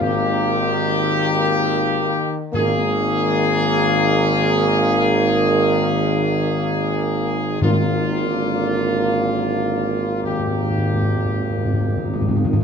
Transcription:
0, 0, Header, 1, 6, 480
1, 0, Start_track
1, 0, Tempo, 631579
1, 9, Time_signature, 4, 2, 24, 8
1, 3849, Tempo, 641026
1, 6729, Tempo, 673401
1, 9387, End_track
2, 0, Start_track
2, 0, Title_t, "Trumpet section"
2, 0, Program_c, 0, 61
2, 6, Note_on_c, 0, 67, 88
2, 1800, Note_off_c, 0, 67, 0
2, 1929, Note_on_c, 0, 68, 85
2, 5734, Note_off_c, 0, 68, 0
2, 5759, Note_on_c, 0, 65, 73
2, 7644, Note_off_c, 0, 65, 0
2, 7678, Note_on_c, 0, 67, 57
2, 9343, Note_off_c, 0, 67, 0
2, 9387, End_track
3, 0, Start_track
3, 0, Title_t, "French horn section"
3, 0, Program_c, 1, 60
3, 0, Note_on_c, 1, 58, 79
3, 1787, Note_off_c, 1, 58, 0
3, 1916, Note_on_c, 1, 58, 83
3, 5728, Note_off_c, 1, 58, 0
3, 5772, Note_on_c, 1, 58, 71
3, 9345, Note_off_c, 1, 58, 0
3, 9387, End_track
4, 0, Start_track
4, 0, Title_t, "Trombone section"
4, 0, Program_c, 2, 61
4, 15, Note_on_c, 2, 51, 83
4, 1900, Note_off_c, 2, 51, 0
4, 1937, Note_on_c, 2, 51, 86
4, 6221, Note_off_c, 2, 51, 0
4, 6242, Note_on_c, 2, 50, 65
4, 7558, Note_off_c, 2, 50, 0
4, 7679, Note_on_c, 2, 51, 57
4, 9344, Note_off_c, 2, 51, 0
4, 9387, End_track
5, 0, Start_track
5, 0, Title_t, "Timpani"
5, 0, Program_c, 3, 47
5, 10, Note_on_c, 3, 44, 82
5, 702, Note_off_c, 3, 44, 0
5, 1929, Note_on_c, 3, 44, 87
5, 2615, Note_off_c, 3, 44, 0
5, 5759, Note_on_c, 3, 44, 90
5, 6455, Note_off_c, 3, 44, 0
5, 7672, Note_on_c, 3, 44, 36
5, 7721, Note_off_c, 3, 44, 0
5, 7729, Note_on_c, 3, 44, 36
5, 7775, Note_off_c, 3, 44, 0
5, 7783, Note_on_c, 3, 44, 36
5, 7831, Note_off_c, 3, 44, 0
5, 7839, Note_on_c, 3, 44, 37
5, 7887, Note_off_c, 3, 44, 0
5, 7895, Note_on_c, 3, 44, 39
5, 7940, Note_off_c, 3, 44, 0
5, 7949, Note_on_c, 3, 44, 41
5, 7996, Note_off_c, 3, 44, 0
5, 8004, Note_on_c, 3, 44, 41
5, 8051, Note_off_c, 3, 44, 0
5, 8060, Note_on_c, 3, 44, 40
5, 8113, Note_off_c, 3, 44, 0
5, 8122, Note_on_c, 3, 44, 42
5, 8167, Note_off_c, 3, 44, 0
5, 8176, Note_on_c, 3, 44, 46
5, 8223, Note_off_c, 3, 44, 0
5, 8232, Note_on_c, 3, 44, 46
5, 8278, Note_off_c, 3, 44, 0
5, 8287, Note_on_c, 3, 44, 45
5, 8331, Note_off_c, 3, 44, 0
5, 8339, Note_on_c, 3, 44, 44
5, 8389, Note_off_c, 3, 44, 0
5, 8397, Note_on_c, 3, 44, 48
5, 8449, Note_off_c, 3, 44, 0
5, 8457, Note_on_c, 3, 44, 48
5, 8509, Note_off_c, 3, 44, 0
5, 8518, Note_on_c, 3, 44, 51
5, 8566, Note_off_c, 3, 44, 0
5, 8575, Note_on_c, 3, 44, 59
5, 8621, Note_off_c, 3, 44, 0
5, 8630, Note_on_c, 3, 44, 60
5, 8675, Note_off_c, 3, 44, 0
5, 8683, Note_on_c, 3, 44, 59
5, 8732, Note_off_c, 3, 44, 0
5, 8740, Note_on_c, 3, 44, 64
5, 8788, Note_off_c, 3, 44, 0
5, 8796, Note_on_c, 3, 44, 61
5, 8842, Note_off_c, 3, 44, 0
5, 8851, Note_on_c, 3, 44, 65
5, 8900, Note_off_c, 3, 44, 0
5, 8909, Note_on_c, 3, 44, 65
5, 8959, Note_off_c, 3, 44, 0
5, 8968, Note_on_c, 3, 44, 67
5, 9020, Note_off_c, 3, 44, 0
5, 9027, Note_on_c, 3, 44, 77
5, 9074, Note_off_c, 3, 44, 0
5, 9082, Note_on_c, 3, 44, 77
5, 9126, Note_off_c, 3, 44, 0
5, 9134, Note_on_c, 3, 44, 81
5, 9182, Note_off_c, 3, 44, 0
5, 9191, Note_on_c, 3, 44, 85
5, 9240, Note_off_c, 3, 44, 0
5, 9248, Note_on_c, 3, 44, 82
5, 9301, Note_off_c, 3, 44, 0
5, 9308, Note_on_c, 3, 44, 87
5, 9353, Note_off_c, 3, 44, 0
5, 9362, Note_on_c, 3, 44, 87
5, 9387, Note_off_c, 3, 44, 0
5, 9387, End_track
6, 0, Start_track
6, 0, Title_t, "Tuba"
6, 0, Program_c, 4, 58
6, 0, Note_on_c, 4, 32, 83
6, 1691, Note_off_c, 4, 32, 0
6, 1931, Note_on_c, 4, 32, 90
6, 5735, Note_off_c, 4, 32, 0
6, 5765, Note_on_c, 4, 32, 76
6, 9342, Note_off_c, 4, 32, 0
6, 9387, End_track
0, 0, End_of_file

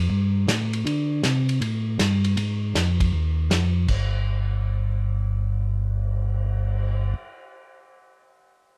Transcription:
0, 0, Header, 1, 4, 480
1, 0, Start_track
1, 0, Tempo, 378549
1, 1089, Time_signature, 4, 2, 24, 8
1, 11132, End_track
2, 0, Start_track
2, 0, Title_t, "Tonewheel organ"
2, 0, Program_c, 0, 16
2, 123, Note_on_c, 0, 43, 84
2, 592, Note_off_c, 0, 43, 0
2, 604, Note_on_c, 0, 45, 74
2, 1072, Note_off_c, 0, 45, 0
2, 1084, Note_on_c, 0, 50, 74
2, 1552, Note_off_c, 0, 50, 0
2, 1569, Note_on_c, 0, 48, 89
2, 2035, Note_off_c, 0, 48, 0
2, 2045, Note_on_c, 0, 45, 76
2, 2513, Note_off_c, 0, 45, 0
2, 2532, Note_on_c, 0, 43, 86
2, 2996, Note_off_c, 0, 43, 0
2, 3009, Note_on_c, 0, 44, 75
2, 3475, Note_off_c, 0, 44, 0
2, 3487, Note_on_c, 0, 41, 84
2, 3953, Note_off_c, 0, 41, 0
2, 3965, Note_on_c, 0, 39, 82
2, 4433, Note_off_c, 0, 39, 0
2, 4443, Note_on_c, 0, 41, 82
2, 4911, Note_off_c, 0, 41, 0
2, 4925, Note_on_c, 0, 31, 84
2, 9052, Note_off_c, 0, 31, 0
2, 11132, End_track
3, 0, Start_track
3, 0, Title_t, "Cymbal swell"
3, 5236, Note_on_c, 9, 59, 44
3, 8664, Note_off_c, 9, 59, 0
3, 11132, End_track
4, 0, Start_track
4, 0, Title_t, "Drums"
4, 614, Note_on_c, 9, 38, 68
4, 615, Note_on_c, 9, 44, 65
4, 615, Note_on_c, 9, 51, 68
4, 741, Note_off_c, 9, 38, 0
4, 742, Note_off_c, 9, 44, 0
4, 742, Note_off_c, 9, 51, 0
4, 929, Note_on_c, 9, 51, 49
4, 1055, Note_off_c, 9, 51, 0
4, 1098, Note_on_c, 9, 51, 56
4, 1225, Note_off_c, 9, 51, 0
4, 1565, Note_on_c, 9, 38, 63
4, 1566, Note_on_c, 9, 44, 50
4, 1566, Note_on_c, 9, 51, 62
4, 1692, Note_off_c, 9, 38, 0
4, 1693, Note_off_c, 9, 44, 0
4, 1693, Note_off_c, 9, 51, 0
4, 1888, Note_on_c, 9, 51, 46
4, 2014, Note_off_c, 9, 51, 0
4, 2050, Note_on_c, 9, 51, 57
4, 2177, Note_off_c, 9, 51, 0
4, 2528, Note_on_c, 9, 38, 64
4, 2529, Note_on_c, 9, 44, 61
4, 2529, Note_on_c, 9, 51, 75
4, 2655, Note_off_c, 9, 38, 0
4, 2656, Note_off_c, 9, 44, 0
4, 2656, Note_off_c, 9, 51, 0
4, 2846, Note_on_c, 9, 51, 46
4, 2973, Note_off_c, 9, 51, 0
4, 3006, Note_on_c, 9, 51, 55
4, 3133, Note_off_c, 9, 51, 0
4, 3492, Note_on_c, 9, 38, 66
4, 3493, Note_on_c, 9, 44, 57
4, 3493, Note_on_c, 9, 51, 66
4, 3619, Note_off_c, 9, 38, 0
4, 3620, Note_off_c, 9, 44, 0
4, 3620, Note_off_c, 9, 51, 0
4, 3807, Note_on_c, 9, 36, 57
4, 3809, Note_on_c, 9, 51, 62
4, 3934, Note_off_c, 9, 36, 0
4, 3936, Note_off_c, 9, 51, 0
4, 4449, Note_on_c, 9, 38, 67
4, 4451, Note_on_c, 9, 44, 56
4, 4451, Note_on_c, 9, 51, 64
4, 4576, Note_off_c, 9, 38, 0
4, 4577, Note_off_c, 9, 44, 0
4, 4577, Note_off_c, 9, 51, 0
4, 4923, Note_on_c, 9, 49, 56
4, 4927, Note_on_c, 9, 36, 51
4, 5050, Note_off_c, 9, 49, 0
4, 5054, Note_off_c, 9, 36, 0
4, 11132, End_track
0, 0, End_of_file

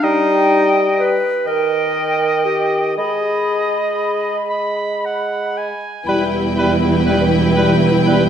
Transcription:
0, 0, Header, 1, 11, 480
1, 0, Start_track
1, 0, Key_signature, 5, "minor"
1, 0, Tempo, 958466
1, 19, Time_signature, 6, 3, 24, 8
1, 979, Tempo, 1029160
1, 2899, Tempo, 993377
1, 3972, End_track
2, 0, Start_track
2, 0, Title_t, "Flute section"
2, 0, Program_c, 0, 73
2, 14, Note_on_c, 0, 79, 56
2, 565, Note_off_c, 0, 79, 0
2, 724, Note_on_c, 0, 79, 49
2, 1436, Note_off_c, 0, 79, 0
2, 1448, Note_on_c, 0, 83, 36
2, 2719, Note_off_c, 0, 83, 0
2, 2897, Note_on_c, 0, 83, 44
2, 2952, Note_off_c, 0, 83, 0
2, 3143, Note_on_c, 0, 83, 41
2, 3197, Note_off_c, 0, 83, 0
2, 3383, Note_on_c, 0, 83, 41
2, 3437, Note_off_c, 0, 83, 0
2, 3626, Note_on_c, 0, 83, 46
2, 3680, Note_off_c, 0, 83, 0
2, 3856, Note_on_c, 0, 83, 39
2, 3910, Note_off_c, 0, 83, 0
2, 3972, End_track
3, 0, Start_track
3, 0, Title_t, "Violin section"
3, 0, Program_c, 1, 48
3, 2898, Note_on_c, 1, 79, 48
3, 3972, Note_off_c, 1, 79, 0
3, 3972, End_track
4, 0, Start_track
4, 0, Title_t, "Oboe"
4, 0, Program_c, 2, 68
4, 16, Note_on_c, 2, 75, 50
4, 585, Note_off_c, 2, 75, 0
4, 729, Note_on_c, 2, 75, 45
4, 1434, Note_off_c, 2, 75, 0
4, 1450, Note_on_c, 2, 75, 35
4, 2107, Note_off_c, 2, 75, 0
4, 2162, Note_on_c, 2, 83, 39
4, 2423, Note_on_c, 2, 78, 34
4, 2430, Note_off_c, 2, 83, 0
4, 2666, Note_on_c, 2, 80, 29
4, 2673, Note_off_c, 2, 78, 0
4, 2903, Note_off_c, 2, 80, 0
4, 2905, Note_on_c, 2, 71, 43
4, 2982, Note_off_c, 2, 71, 0
4, 3145, Note_on_c, 2, 71, 37
4, 3222, Note_off_c, 2, 71, 0
4, 3376, Note_on_c, 2, 71, 39
4, 3454, Note_off_c, 2, 71, 0
4, 3621, Note_on_c, 2, 71, 41
4, 3698, Note_off_c, 2, 71, 0
4, 3862, Note_on_c, 2, 71, 44
4, 3939, Note_off_c, 2, 71, 0
4, 3972, End_track
5, 0, Start_track
5, 0, Title_t, "Violin section"
5, 0, Program_c, 3, 48
5, 2894, Note_on_c, 3, 71, 50
5, 3972, Note_off_c, 3, 71, 0
5, 3972, End_track
6, 0, Start_track
6, 0, Title_t, "Clarinet"
6, 0, Program_c, 4, 71
6, 15, Note_on_c, 4, 63, 72
6, 406, Note_off_c, 4, 63, 0
6, 491, Note_on_c, 4, 71, 68
6, 736, Note_on_c, 4, 70, 57
6, 744, Note_off_c, 4, 71, 0
6, 1211, Note_on_c, 4, 67, 49
6, 1218, Note_off_c, 4, 70, 0
6, 1449, Note_off_c, 4, 67, 0
6, 1452, Note_on_c, 4, 68, 47
6, 2155, Note_off_c, 4, 68, 0
6, 2900, Note_on_c, 4, 64, 45
6, 2977, Note_off_c, 4, 64, 0
6, 3142, Note_on_c, 4, 64, 41
6, 3219, Note_off_c, 4, 64, 0
6, 3376, Note_on_c, 4, 64, 40
6, 3453, Note_off_c, 4, 64, 0
6, 3627, Note_on_c, 4, 64, 41
6, 3705, Note_off_c, 4, 64, 0
6, 3854, Note_on_c, 4, 64, 42
6, 3931, Note_off_c, 4, 64, 0
6, 3972, End_track
7, 0, Start_track
7, 0, Title_t, "Viola section"
7, 0, Program_c, 5, 48
7, 2895, Note_on_c, 5, 64, 46
7, 3972, Note_off_c, 5, 64, 0
7, 3972, End_track
8, 0, Start_track
8, 0, Title_t, "French horn section"
8, 0, Program_c, 6, 60
8, 2894, Note_on_c, 6, 55, 50
8, 2896, Note_on_c, 6, 59, 50
8, 3972, Note_off_c, 6, 55, 0
8, 3972, Note_off_c, 6, 59, 0
8, 3972, End_track
9, 0, Start_track
9, 0, Title_t, "Bassoon"
9, 0, Program_c, 7, 70
9, 19, Note_on_c, 7, 55, 60
9, 575, Note_off_c, 7, 55, 0
9, 733, Note_on_c, 7, 51, 54
9, 1436, Note_off_c, 7, 51, 0
9, 1455, Note_on_c, 7, 56, 40
9, 2723, Note_off_c, 7, 56, 0
9, 2904, Note_on_c, 7, 55, 45
9, 2982, Note_off_c, 7, 55, 0
9, 3152, Note_on_c, 7, 55, 41
9, 3230, Note_off_c, 7, 55, 0
9, 3391, Note_on_c, 7, 55, 37
9, 3468, Note_off_c, 7, 55, 0
9, 3625, Note_on_c, 7, 55, 42
9, 3703, Note_off_c, 7, 55, 0
9, 3866, Note_on_c, 7, 55, 43
9, 3943, Note_off_c, 7, 55, 0
9, 3972, End_track
10, 0, Start_track
10, 0, Title_t, "Cello section"
10, 0, Program_c, 8, 48
10, 2896, Note_on_c, 8, 40, 48
10, 3972, Note_off_c, 8, 40, 0
10, 3972, End_track
11, 0, Start_track
11, 0, Title_t, "Double bass section"
11, 0, Program_c, 10, 48
11, 2897, Note_on_c, 10, 28, 43
11, 3972, Note_off_c, 10, 28, 0
11, 3972, End_track
0, 0, End_of_file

